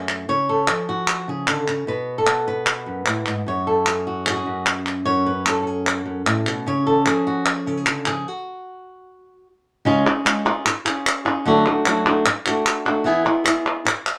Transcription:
Already playing: F#2 A3 C#4 G#4
0.09 clap
0.29 C#3 C#5
0.49 A4
0.67 F3 G#4, clap
0.89 F#4
1.08 clap
1.28 C#3 G#4
1.47 D3 A4, clap
1.68 C#3 G#4, clap
1.87 B2 B4
2.18 A4
2.26 B3, clap
2.48 B4
2.66 clap
2.86 F#2
3.06 A2, clap
3.26 G#2, clap
3.47 F#2 C#5
3.67 A4
3.86 C#4 G#4, clap
4.07 F#4
4.26 F#4 G#4, clap
4.36 G#4
4.46 F#2
4.66 clap
4.86 clap
5.05 F#2 C#5
5.26 B4
5.46 C#4 A4, clap
5.63 A4
5.67 G#4
5.87 A4, clap
6.06 F#2
6.26 A2, clap
6.46 B2, clap
6.66 C#3 C#5
6.87 A4
7.05 F3 G#4, clap
7.27 F#4
7.46 G#4, clap
7.66 C#3 A4
7.77 G#4
7.86 D3, clap
8.06 F3 G#4, clap
8.28 F#4
9.85 C#3 G#3 C#4 F4 G#4
10.06 C#4 F4 G#4
10.25 G#3 C#4 F4 G#4, clap
10.45 C#4 F4 G#4
10.66 muted nylon-string guitar stroke, clap
10.85 C#4 F4 G#4, clap
11.07 clap
11.25 C#4 F4 G#4
11.45 D3 F#3 A3 D4 F#4
11.66 D4 F#4
11.86 F#3 A3 D4 F#4, clap
12.06 A3 D4 F#4
12.26 muted nylon-string guitar stroke, clap
12.46 A3 D4 F#4, clap
12.66 clap
12.85 A3 D4 F#4
13.04 E3 B3 E4 G#4
13.25 B3 E4 G#4
13.44 B3 E4 G#4, clap
13.85 muted nylon-string guitar stroke, clap
14.06 clap

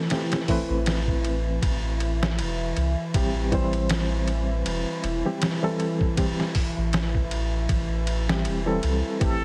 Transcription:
Already playing: E3 E4
0.10 E3 A3 C4 G4, snare, ride
0.32 snare, ride
0.48 E3 A3 C4 B4, kick, open hi-hat
0.70 A1
0.86 snare, ride
1.08 kick
1.25 ride
1.62 A1, kick, ride
2.00 ride
2.23 snare
2.39 E1, ride
2.77 C2, ride
3.14 A1 E3 G3 C4 G4, kick, ride
3.52 E3 G3 C4 C5, kick, ride
3.73 ride
3.89 snare, ride
4.28 ride
4.66 E1, ride
5.03 E1, ride
5.25 E3 G3 C4 G4
5.42 snare, ride
5.62 E3 G3 C4 A4
5.80 ride
6.01 kick
6.17 E3 G3 C4 G4, kick, ride
6.40 snare
6.55 kick, open hi-hat
6.77 A1
6.93 snare, ride
7.14 kick
7.31 ride
7.69 A1, kick, ride
8.07 ride
8.28 E3 G3 C4 G4, snare
8.45 E1, ride
8.66 E3 G3 C4 A4
8.83 C2, ride
9.20 A1 E3 A3 C4 E4 G4 A4, kick, ride

